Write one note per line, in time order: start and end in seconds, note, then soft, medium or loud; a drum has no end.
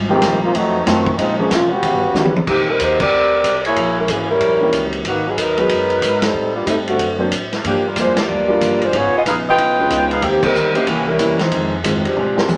0.00 0.21 G#1 medium
0.00 0.11 G#2 soft
0.00 0.11 G3 soft
0.00 0.12 C4 medium
0.00 0.12 F4 medium
0.08 0.39 D#3 medium
0.08 0.20 F3 medium
0.08 0.20 G#3 medium
0.08 0.20 A#3 medium
0.08 0.40 A#3 medium
0.08 0.40 C4 medium
0.08 0.20 C4 medium
0.08 0.40 G4 loud
0.08 0.21 G4 medium
0.21 0.53 A#1 medium
0.21 0.43 G#2 medium
0.21 0.43 G3 medium
0.21 0.44 C4 medium
0.21 0.44 F4 medium
0.21 kick soft
0.21 snare medium
0.21 hi-hat pedal medium
0.21 ride medium
0.41 0.53 A#3 medium
0.41 0.52 C4 medium
0.41 0.52 D#4 medium
0.41 0.53 F4 medium
0.53 0.85 F2 medium
0.53 0.75 F3 soft
0.53 0.84 F#3 medium
0.53 0.85 A3 medium
0.53 0.76 A3 medium
0.53 0.84 C4 medium
0.53 0.86 D#4 loud
0.53 0.76 D#4 soft
0.53 0.76 F#4 medium
0.53 kick soft
0.53 ride medium
0.85 1.17 F#2 medium
0.85 1.04 D#3 medium
0.85 1.16 D#3 medium
0.85 1.07 F3 medium
0.85 1.16 F#3 medium
0.85 1.04 F#3 medium
0.85 1.16 A3 medium
0.85 1.07 A3 medium
0.85 1.04 A3 medium
0.85 1.16 C4 medium
0.85 1.05 C4 medium
0.85 1.08 D#4 medium
0.85 1.05 F4 medium
0.85 1.08 F#4 medium
0.85 kick soft
0.85 snare medium
0.85 hi-hat pedal medium
0.85 ride medium
1.06 kick medium
1.17 1.39 A#2 soft
1.17 1.49 A#2 medium
1.17 1.36 F3 medium
1.17 1.40 F3 soft
1.17 1.36 G#3 medium
1.17 1.40 G#3 soft
1.17 1.38 C4 medium
1.17 1.40 C#4 soft
1.17 1.38 D#4 medium
1.17 kick soft
1.17 ride medium
1.37 1.49 F3 medium
1.37 1.48 G#3 medium
1.37 1.49 G#3 medium
1.37 1.48 A#3 medium
1.37 1.49 A#3 medium
1.37 1.48 C#4 medium
1.37 1.49 C#4 medium
1.37 1.50 G#4 medium
1.49 1.72 A#2 medium
1.49 1.82 C3 medium
1.49 1.72 F3 medium
1.49 1.70 G#3 medium
1.49 1.72 G#3 medium
1.49 1.70 A#3 medium
1.49 1.70 C#4 medium
1.49 1.73 C#4 medium
1.49 1.70 F4 medium
1.49 kick soft
1.49 snare medium
1.49 hi-hat pedal medium
1.49 ride medium
1.69 2.35 C#3 medium
1.69 2.34 B3 medium
1.69 2.34 F#4 medium
1.69 2.35 G4 medium
1.82 1.93 B2 medium
1.82 2.04 D#3 soft
1.82 2.04 B3 soft
1.82 2.05 C#4 soft
1.82 2.05 G4 soft
1.82 kick soft
1.82 ride medium
1.93 2.03 G2 medium
2.04 2.13 D#2 medium
2.14 2.46 C#3 medium
2.14 2.33 D#3 medium
2.14 2.36 D#3 medium
2.14 2.33 G3 medium
2.14 2.33 B3 medium
2.14 2.37 B3 medium
2.14 2.37 C#4 medium
2.14 2.34 C#4 medium
2.14 2.34 F#4 medium
2.14 2.37 G4 medium
2.14 snare soft
2.14 hi-hat pedal medium
2.25 high tom medium
2.36 high tom medium
2.47 2.78 A#2 medium
2.47 2.67 D#3 medium
2.47 2.67 A#3 medium
2.47 2.67 C4 medium
2.47 2.67 G4 loud
2.47 kick medium
2.47 crash medium
2.69 2.80 G3 medium
2.69 2.80 C4 medium
2.69 2.80 D#4 medium
2.69 2.80 A#4 medium
2.79 3.10 D#2 medium
2.79 3.01 A#3 medium
2.79 3.01 D#4 medium
2.79 3.00 G4 medium
2.79 3.01 C5 medium
2.79 kick soft
2.79 hi-hat pedal medium
2.79 ride medium
3.00 3.61 C4 medium
3.00 3.61 G4 medium
3.00 3.61 A#4 medium
3.00 3.61 D5 loud
3.00 kick medium
3.00 crash medium
3.11 3.43 D2 medium
3.44 3.75 C2 medium
3.44 kick soft
3.44 hi-hat pedal medium
3.44 ride medium
3.65 3.95 A#3 medium
3.65 3.95 E4 medium
3.65 3.95 G#4 medium
3.65 3.95 C#5 loud
3.65 ride soft
3.76 4.07 A#1 medium
3.76 kick soft
3.76 ride medium
3.98 4.10 G#3 medium
3.98 4.09 C#4 medium
3.98 4.09 E4 medium
3.98 4.09 A#4 medium
4.08 4.40 G#1 medium
4.08 4.29 E3 medium
4.08 4.30 A#3 medium
4.08 4.30 C#4 medium
4.08 4.30 G#4 medium
4.08 kick soft
4.08 hi-hat pedal medium
4.08 ride medium
4.30 4.90 G3 medium
4.30 4.90 C#4 medium
4.30 4.90 E4 medium
4.30 4.90 A#4 loud
4.40 4.72 A#1 medium
4.40 kick soft
4.40 ride medium
4.60 5.03 D#3 medium
4.60 5.02 E3 medium
4.60 5.03 A#3 medium
4.60 5.03 C#4 medium
4.60 5.03 G4 medium
4.72 5.04 C#2 medium
4.72 kick soft
4.72 hi-hat pedal medium
4.72 ride medium
4.92 ride soft
5.05 5.36 G#1 medium
5.05 5.25 D#3 medium
5.05 5.25 A#3 medium
5.05 5.25 B3 medium
5.05 5.25 F#4 loud
5.05 kick soft
5.05 ride medium
5.28 5.36 F#3 medium
5.28 5.37 B3 medium
5.28 5.37 D#4 medium
5.28 5.39 G#4 medium
5.37 5.69 D#2 medium
5.37 5.57 F#3 medium
5.37 5.58 B3 medium
5.37 5.57 D#4 medium
5.37 5.57 A#4 medium
5.37 kick soft
5.37 hi-hat pedal medium
5.37 ride medium
5.57 6.00 F#3 medium
5.57 6.23 F#3 medium
5.57 5.99 G#3 medium
5.57 6.00 B3 medium
5.57 6.22 D#4 medium
5.57 6.00 D#4 medium
5.57 6.00 G#4 medium
5.57 6.23 A#4 medium
5.57 6.23 B4 medium
5.57 ride soft
5.69 6.01 F#2 medium
5.69 kick soft
5.69 ride medium
5.90 ride soft
6.02 6.33 G#2 medium
6.02 kick soft
6.02 hi-hat pedal medium
6.02 ride medium
6.22 6.53 G3 medium
6.22 6.55 C4 medium
6.22 6.55 D#4 medium
6.22 6.55 A4 medium
6.22 snare medium
6.22 ride medium
6.34 6.65 A2 medium
6.54 6.66 G3 medium
6.54 6.66 A#3 medium
6.54 6.66 D4 medium
6.54 6.66 F4 medium
6.66 6.98 G2 medium
6.66 6.98 G3 soft
6.66 6.76 G3 medium
6.66 6.99 A3 soft
6.66 6.76 A3 medium
6.66 6.99 C4 soft
6.66 6.76 C4 medium
6.66 6.76 D#4 medium
6.66 6.99 D#4 soft
6.66 6.99 A4 medium
6.66 kick soft
6.66 hi-hat pedal medium
6.66 ride medium
6.88 7.21 D3 medium
6.88 7.21 A3 medium
6.88 7.21 C4 medium
6.88 7.21 F#4 medium
6.88 ride soft
6.99 7.30 F#2 medium
6.99 kick soft
6.99 ride medium
7.18 7.29 F#3 medium
7.18 7.30 A#3 medium
7.18 7.30 C4 medium
7.18 7.30 D4 medium
7.18 7.30 C5 medium
7.32 7.63 A2 medium
7.32 kick soft
7.32 hi-hat pedal medium
7.32 ride medium
7.52 snare soft
7.52 ride soft
7.63 7.85 G2 soft
7.63 7.95 G2 medium
7.63 7.85 F3 soft
7.63 7.84 F3 medium
7.63 7.85 A#3 soft
7.63 7.84 A#3 medium
7.63 7.86 D4 soft
7.63 7.84 D4 medium
7.63 7.84 G4 medium
7.63 kick soft
7.63 ride medium
7.87 7.97 G3 medium
7.87 7.97 D4 medium
7.87 7.97 F4 medium
7.87 7.97 A#4 medium
7.96 8.15 F2 medium
7.96 8.18 G2 medium
7.96 8.18 F3 medium
7.96 8.17 G#3 medium
7.96 8.18 A#3 medium
7.96 8.18 D4 medium
7.96 8.17 D4 medium
7.96 8.17 F4 medium
7.96 8.17 C5 medium
7.96 kick soft
7.96 hi-hat pedal medium
7.96 ride medium
8.16 8.82 A#3 medium
8.16 8.82 F4 medium
8.16 8.82 G4 medium
8.16 8.82 D5 medium
8.16 muted upright bass stroke soft
8.16 snare medium
8.16 ride medium
8.28 8.59 D2 medium
8.28 8.49 G2 soft
8.28 8.50 F3 soft
8.28 8.50 A#3 soft
8.28 8.50 D4 soft
8.48 8.90 G3 medium
8.48 8.90 A#3 medium
8.48 8.90 D4 medium
8.48 8.91 F4 medium
8.48 8.91 A#4 medium
8.60 8.92 G1 medium
8.60 8.82 G2 medium
8.60 8.82 F3 medium
8.60 8.82 A#3 medium
8.60 8.83 D4 medium
8.60 kick soft
8.60 hi-hat pedal soft
8.60 ride medium
8.81 8.94 G#3 medium
8.81 8.94 D4 medium
8.81 8.94 F4 medium
8.81 8.94 C5 medium
8.81 ride soft
8.93 9.12 G#1 medium
8.93 9.14 C#3 soft
8.93 9.15 B3 soft
8.93 9.15 B3 medium
8.93 9.15 D#4 soft
8.93 9.15 F4 soft
8.93 9.15 F4 medium
8.93 9.15 G#4 medium
8.93 9.14 C#5 loud
8.93 kick soft
8.93 ride medium
9.13 9.21 B3 medium
9.13 9.21 F4 medium
9.13 9.21 D#5 medium
9.13 muted upright bass stroke soft
9.17 9.21 G#4 medium
9.25 9.57 A#1 medium
9.25 9.47 C#3 medium
9.25 9.47 B3 medium
9.25 9.47 D#4 medium
9.25 9.36 D#4 medium
9.25 9.47 F4 medium
9.25 9.36 G#4 medium
9.25 9.36 B4 medium
9.25 9.36 F5 loud
9.25 kick soft
9.25 hi-hat pedal medium
9.25 ride medium
9.49 10.08 F4 medium
9.49 10.08 B4 medium
9.49 10.08 D#5 medium
9.49 10.08 G5 loud
9.57 9.89 B1 medium
9.57 9.79 C#3 soft
9.57 9.79 B3 soft
9.57 9.79 D#4 soft
9.57 9.80 F4 soft
9.57 kick soft
9.57 ride medium
9.78 10.19 G#3 medium
9.78 10.20 C#4 medium
9.78 10.20 D#4 medium
9.78 10.20 F4 medium
9.78 10.21 B4 medium
9.90 10.21 C#2 medium
9.90 10.11 C#3 medium
9.90 10.12 B3 medium
9.90 10.12 D#4 medium
9.90 10.12 F4 medium
9.90 kick soft
9.90 hi-hat pedal medium
9.90 ride medium
10.11 10.22 D#4 medium
10.11 10.23 G#4 medium
10.11 10.23 B4 medium
10.11 10.23 F5 medium
10.11 ride soft
10.21 10.53 D#2 medium
10.21 10.43 D#3 soft
10.21 10.43 D#3 medium
10.21 10.44 A#3 soft
10.21 10.43 A#3 medium
10.21 10.44 C4 soft
10.21 10.42 C4 medium
10.21 10.44 G4 medium
10.21 10.43 G4 loud
10.21 kick soft
10.21 ride medium
10.42 10.75 G3 medium
10.42 10.53 A#3 medium
10.42 10.53 C4 medium
10.42 10.75 C4 medium
10.42 10.53 D#4 medium
10.42 10.74 D#4 medium
10.42 10.53 G4 medium
10.42 10.75 A#4 medium
10.42 10.53 C5 medium
10.42 kick medium
10.42 crash medium
10.54 10.86 D2 medium
10.54 10.75 D#3 medium
10.54 10.76 A#3 medium
10.54 10.76 C4 medium
10.54 10.76 G4 medium
10.54 hi-hat pedal medium
10.74 10.85 A#3 medium
10.74 10.86 A#3 medium
10.74 10.85 C#4 medium
10.74 10.86 D#4 medium
10.74 10.85 E4 medium
10.74 10.86 G4 medium
10.74 10.86 C5 medium
10.74 ride soft
10.86 11.18 C2 medium
10.86 11.08 C3 medium
10.86 11.07 E3 medium
10.86 11.08 E3 soft
10.86 11.07 A#3 medium
10.86 11.09 A#3 medium
10.86 11.06 C#4 medium
10.86 11.09 C#4 soft
10.86 11.07 G4 medium
10.86 kick soft
10.86 ride medium
11.07 11.39 G3 medium
11.07 11.39 C#4 medium
11.07 11.39 E4 medium
11.07 11.39 A#4 medium
11.18 11.38 E2 medium
11.18 11.40 C3 medium
11.18 11.40 E3 medium
11.18 11.41 A#3 medium
11.18 11.41 C#4 medium
11.18 kick soft
11.18 hi-hat pedal medium
11.18 ride medium
11.39 11.75 F3 medium
11.39 11.75 C4 medium
11.39 11.75 D#4 medium
11.39 11.76 G#4 medium
11.39 muted upright bass stroke soft
11.39 snare medium
11.39 ride soft
11.51 11.72 F2 soft
11.51 11.82 F2 medium
11.51 11.73 D#3 soft
11.51 11.73 G#3 soft
11.51 11.73 C4 soft
11.51 kick soft
11.51 ride medium
11.82 12.04 F2 medium
11.82 12.03 G#2 medium
11.82 12.05 D#3 medium
11.82 12.15 G#3 medium
11.82 12.05 G#3 medium
11.82 12.16 C4 soft
11.82 12.05 C4 medium
11.82 12.16 D#4 soft
11.82 12.16 F4 soft
11.82 12.16 C5 medium
11.82 kick soft
11.82 hi-hat pedal medium
11.82 ride medium
12.04 12.57 F3 medium
12.04 12.57 C4 medium
12.04 12.57 D4 medium
12.04 12.57 G4 medium
12.04 muted upright bass stroke soft
12.04 ride soft
12.15 12.37 A#2 soft
12.15 12.47 A#2 medium
12.15 12.37 G#3 soft
12.15 12.38 C4 medium
12.15 12.38 D4 medium
12.15 mid tom soft
12.35 12.46 G#3 medium
12.35 12.47 C4 soft
12.35 12.47 D4 medium
12.35 12.47 F4 medium
12.35 12.47 A#4 medium
12.35 snare medium
12.48 12.57 F2 medium
12.48 12.57 A#2 medium
12.48 12.57 G#3 medium
12.48 12.57 C4 medium
12.48 12.57 D4 medium
12.48 hi-hat pedal medium
12.48 high tom medium